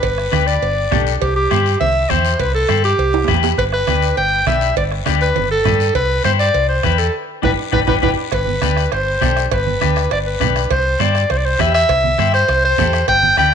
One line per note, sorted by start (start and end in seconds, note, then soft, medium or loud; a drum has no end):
0.00 0.27 G1 loud
0.00 0.48 B4 medium
0.00 bombo low medium
0.00 cowbell loud
0.00 long guiro medium
0.18 bombo rim medium
0.32 0.56 D2 medium
0.32 0.53 D4 medium
0.32 0.53 G4 medium
0.32 0.53 B4 medium
0.32 bombo rim medium
0.32 high conga medium
0.32 short guiro medium
0.47 1.06 D5 loud
0.47 short guiro medium
0.62 0.86 G1 loud
0.62 cowbell medium
0.62 long guiro medium
0.91 1.16 B1 medium
0.91 1.12 D4 medium
0.91 1.13 G4 medium
0.91 1.13 A4 medium
0.91 bombo low medium
0.91 bombo rim medium
0.91 high conga medium
0.91 low conga medium
0.91 low timbale medium
0.91 short guiro medium
1.07 short guiro medium
1.21 1.45 C2 loud
1.21 1.35 G4 medium
1.21 bombo low medium
1.21 cowbell loud
1.21 long guiro medium
1.36 1.77 G4 medium
1.51 1.75 G2 medium
1.51 1.71 E4 medium
1.51 1.72 G4 medium
1.51 1.72 C5 medium
1.51 bombo rim medium
1.51 high conga medium
1.51 short guiro medium
1.66 short guiro medium
1.80 2.04 C2 loud
1.80 2.12 E5 loud
1.80 cowbell medium
1.80 high conga medium
1.80 long guiro medium
2.10 2.34 E2 medium
2.10 2.31 E4 medium
2.10 2.31 G4 medium
2.10 2.31 C5 medium
2.10 2.41 C5 medium
2.10 bombo low medium
2.10 bombo rim medium
2.10 high conga medium
2.10 short guiro medium
2.25 short guiro medium
2.40 2.63 C2 loud
2.40 2.54 B4 medium
2.40 bombo low medium
2.40 cowbell loud
2.40 long guiro medium
2.55 2.82 A4 medium
2.69 2.93 G2 medium
2.69 2.90 E4 medium
2.69 2.90 G4 medium
2.69 2.90 C5 medium
2.69 bombo rim medium
2.69 high conga medium
2.69 short guiro medium
2.84 3.40 G4 medium
2.84 short guiro medium
2.98 3.22 C2 loud
2.98 cowbell medium
2.98 long guiro medium
3.14 high timbale loud
3.24 3.49 E4 medium
3.24 3.49 G4 medium
3.24 bombo rim medium
3.24 low timbale medium
3.28 3.52 E2 medium
3.28 3.49 B4 medium
3.28 bombo low medium
3.28 high conga medium
3.28 low conga medium
3.28 short guiro medium
3.34 low timbale medium
3.43 low timbale medium
3.43 short guiro medium
3.58 3.82 G1 loud
3.58 3.65 B4 loud
3.58 bombo low medium
3.58 cowbell loud
3.73 4.14 B4 medium
3.73 bombo rim medium
3.87 4.12 D2 medium
3.87 4.08 D4 medium
3.87 4.08 G4 medium
3.87 4.09 B4 medium
3.87 bombo rim medium
3.87 high conga medium
3.87 short guiro medium
4.02 short guiro medium
4.17 4.41 G1 loud
4.17 4.45 G5 loud
4.17 cowbell medium
4.17 long guiro medium
4.46 4.71 B1 medium
4.46 4.67 D4 medium
4.46 4.68 G4 medium
4.46 4.68 B4 medium
4.46 4.75 E5 medium
4.46 bombo low medium
4.46 bombo rim medium
4.46 high conga medium
4.46 short guiro medium
4.61 short guiro medium
4.76 5.00 G1 loud
4.76 4.84 D5 medium
4.76 bombo low medium
4.76 cowbell loud
4.76 long guiro medium
4.92 bombo rim medium
5.06 5.31 D2 medium
5.06 5.27 D4 medium
5.06 5.27 G4 medium
5.06 5.27 B4 medium
5.06 bombo rim medium
5.06 high conga medium
5.06 short guiro medium
5.21 5.49 B4 medium
5.21 short guiro medium
5.36 5.60 G1 loud
5.36 cowbell medium
5.36 high conga medium
5.36 long guiro medium
5.51 5.92 A4 loud
5.65 5.89 G2 medium
5.65 5.86 D4 medium
5.65 5.86 G4 medium
5.65 5.86 B4 medium
5.65 bombo low medium
5.65 bombo rim medium
5.65 high conga medium
5.65 low conga medium
5.65 short guiro medium
5.80 short guiro medium
5.95 6.19 C2 loud
5.95 6.23 B4 loud
5.95 bombo low medium
5.95 cowbell loud
5.95 long guiro medium
6.24 6.49 G2 medium
6.24 6.45 E4 medium
6.24 6.45 G4 medium
6.24 6.31 C5 loud
6.24 6.46 C5 medium
6.24 bombo rim medium
6.24 high conga medium
6.24 short guiro medium
6.39 6.67 D5 loud
6.39 short guiro medium
6.54 6.78 C2 loud
6.54 cowbell medium
6.54 long guiro medium
6.69 6.85 C5 medium
6.83 7.08 E2 medium
6.83 7.05 E4 medium
6.83 7.05 G4 medium
6.83 7.00 B4 medium
6.83 7.05 B4 medium
6.83 bombo low medium
6.83 bombo rim medium
6.83 high conga medium
6.83 short guiro medium
6.98 7.14 A4 medium
6.98 short guiro medium
7.42 7.55 G1 medium
7.42 7.52 D4 medium
7.42 7.53 G4 medium
7.42 7.53 B4 medium
7.42 7.51 B4 medium
7.42 bombo low loud
7.42 low conga medium
7.42 high timbale medium
7.42 long guiro loud
7.72 7.84 G1 medium
7.72 7.82 D4 medium
7.72 7.82 G4 medium
7.72 7.80 B4 medium
7.72 7.82 B4 medium
7.72 bombo low loud
7.72 low conga medium
7.72 high timbale medium
7.72 long guiro loud
7.87 7.99 G1 loud
7.87 7.97 D4 medium
7.87 7.97 G4 medium
7.87 7.97 B4 loud
7.87 7.95 B4 medium
7.87 bombo low loud
7.87 low conga medium
7.87 high timbale loud
7.87 long guiro medium
8.02 8.14 G1 medium
8.02 8.12 D4 medium
8.02 8.12 G4 medium
8.02 8.10 B4 medium
8.02 8.12 B4 medium
8.02 bombo low medium
8.02 low conga medium
8.02 high timbale medium
8.02 long guiro medium
8.32 8.56 G1 loud
8.32 8.88 B4 medium
8.32 bombo low medium
8.32 bombo rim medium
8.32 cowbell loud
8.32 long guiro medium
8.47 high conga medium
8.62 8.86 D2 medium
8.62 8.83 D4 medium
8.62 8.83 G4 medium
8.62 8.83 B4 medium
8.62 bombo rim medium
8.62 high conga medium
8.62 short guiro medium
8.77 bombo rim medium
8.77 short guiro medium
8.92 9.16 G1 loud
8.92 9.48 C5 medium
8.92 bombo rim medium
8.92 cowbell medium
8.92 long guiro medium
9.21 9.46 B1 medium
9.21 9.42 D4 medium
9.21 9.42 G4 medium
9.21 9.43 A4 medium
9.21 bombo low medium
9.21 bombo rim medium
9.21 high conga medium
9.21 short guiro medium
9.37 bombo rim medium
9.37 short guiro medium
9.52 9.75 G1 loud
9.52 10.08 B4 medium
9.52 bombo low medium
9.52 bombo rim medium
9.52 cowbell loud
9.52 long guiro medium
9.67 high conga medium
9.81 10.06 D2 medium
9.81 10.02 D4 medium
9.81 10.02 G4 medium
9.81 10.02 B4 medium
9.81 bombo rim medium
9.81 high conga medium
9.81 short guiro medium
9.96 bombo rim medium
9.96 short guiro medium
10.11 10.35 G1 loud
10.11 10.19 D5 medium
10.11 bombo rim medium
10.11 cowbell medium
10.11 long guiro medium
10.27 10.68 B4 medium
10.40 10.64 B1 medium
10.40 10.61 D4 medium
10.40 10.61 G4 medium
10.40 10.61 B4 medium
10.40 bombo low medium
10.40 bombo rim medium
10.40 high conga medium
10.40 low conga medium
10.40 short guiro medium
10.56 bombo rim medium
10.56 short guiro medium
10.71 10.94 C2 loud
10.71 11.03 C5 medium
10.71 bombo low medium
10.71 bombo rim medium
10.71 cowbell loud
10.71 long guiro medium
10.99 11.24 G2 medium
10.99 11.20 E4 medium
10.99 11.21 G4 medium
10.99 11.21 C5 medium
10.99 11.32 D5 medium
10.99 bombo rim medium
10.99 high conga medium
10.99 short guiro medium
11.15 bombo rim medium
11.15 short guiro medium
11.30 11.54 C2 loud
11.30 11.39 C5 medium
11.30 bombo rim medium
11.30 cowbell medium
11.30 long guiro medium
11.38 11.47 D5 medium
11.45 11.62 C5 medium
11.59 11.83 E2 medium
11.59 11.80 E4 medium
11.59 11.80 G4 medium
11.59 11.80 B4 medium
11.59 11.74 E5 medium
11.59 bombo low medium
11.59 bombo rim medium
11.59 high conga medium
11.59 low timbale medium
11.59 short guiro medium
11.74 12.30 E5 loud
11.74 bombo rim medium
11.74 short guiro medium
11.89 12.13 C2 loud
11.89 bombo low medium
11.89 bombo rim medium
11.89 cowbell loud
11.89 long guiro medium
12.04 high conga medium
12.18 12.42 G2 medium
12.18 12.39 E4 medium
12.18 12.39 G4 medium
12.18 12.40 C5 medium
12.18 bombo rim medium
12.18 high conga medium
12.18 short guiro medium
12.34 12.61 C5 loud
12.34 bombo rim medium
12.34 short guiro medium
12.48 12.72 C2 loud
12.48 bombo rim medium
12.48 cowbell medium
12.48 long guiro medium
12.64 13.05 C5 loud
12.78 13.02 E2 medium
12.78 12.99 E4 medium
12.78 12.99 G4 medium
12.78 12.99 A4 medium
12.78 bombo low medium
12.78 bombo rim medium
12.78 high conga medium
12.78 low conga medium
12.78 low timbale medium
12.78 short guiro medium
12.93 bombo rim medium
12.93 short guiro medium
13.08 13.32 G1 loud
13.08 13.36 G5 loud
13.08 bombo low medium
13.08 bombo rim medium
13.08 cowbell loud
13.08 long guiro medium
13.23 high conga medium
13.37 13.54 D2 medium
13.37 13.54 D4 medium
13.37 13.54 G4 medium
13.37 13.54 B4 medium
13.37 13.54 G5 loud
13.37 bombo rim medium
13.37 high conga medium
13.37 short guiro medium